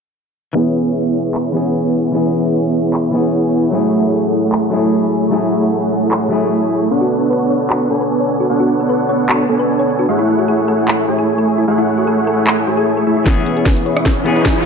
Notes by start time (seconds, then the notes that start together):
0.53 E3 B3 C#4 E4 G#4 C#5 E5
1.34 clap
1.52 E3 B3 C#4 E4 G#4 C#5 F#5
2.12 E3 B3 C#4 E4 G#4 C#5 E5
2.93 clap
3.11 E3 B3 C#4 E4 G#4 C#5 F#5
3.15 G#4
3.71 F#3 A3 E4 G#4 C#5 F#5
4.52 clap
4.70 F#3 A3 E4 G#4 C#5 G#5
4.74 G#4
5.30 F#3 A3 E4 G#4 C#5 F#5
5.34 G#4
6.11 clap
6.29 F#3 A3 E4 G#4 C#5 G#5
6.33 G#4
6.91 B3 D4 A4 C#5 F#5
7.01 F#4
7.21 A4
7.30 B4
7.50 C#5
7.70 F#4, clap
7.90 B3 D4 A4 C#5 G#5
8.01 B4
8.20 C#5
8.40 F#4
8.50 B3 D4 A4 C#5 F#5
8.60 F#4
8.80 A4
8.89 B4
9.09 C#5
9.29 F#4, clap
9.49 B3 D4 A4 C#5 G#5
9.59 B4
9.79 C#5
9.99 F#4
10.09 A3 E4 G#4 C#5 F#5
10.19 E4
10.39 F#4
10.48 G#4
10.68 A4
10.88 E4, clap
11.08 A3 E4 F#4 G#4 C#5 G#5
11.18 G#4
11.38 A4
11.58 E4
11.68 A3 E4 G#4 C#5 F#5
11.78 E4
11.98 F#4
12.07 G#4
12.27 A4
12.47 E4, clap
12.67 A3 E4 F#4 G#4 C#5 G#5
12.77 G#4
12.97 A4
13.07 A3 E4 G#4 C#5 E5
13.17 E4
13.24 E3 B3 C#4, kick, snare, closed hi-hat, riser
13.28 G#4
13.37 E4
13.46 closed hi-hat
13.57 G#4, closed hi-hat
13.66 B4, kick, snare, closed hi-hat
13.77 closed hi-hat
13.86 C#5, closed hi-hat
13.97 cross-stick
14.06 E4, kick, snare, closed hi-hat
14.24 E3 B3 C#4 E4 G#4 C#5 F#5, closed hi-hat
14.36 B4, closed hi-hat
14.46 kick, snare, closed hi-hat
14.56 C#5